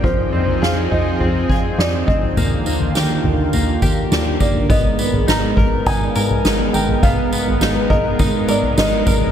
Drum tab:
TB |----------------|x-x-x---x-x-x-x-|x-x-x---x-x-x-x-|x-x-x---x-x-x-x-|
SD |----o-------o---|----o-------o---|----o-------o---|----o-------o---|
FT |o--o--o-o------o|o--o--o-o------o|o--o--o----o---o|o--o--o----o---o|
BD |o---------o---o-|----------o---o-|o-----o-o-------|o-----o-o-----o-|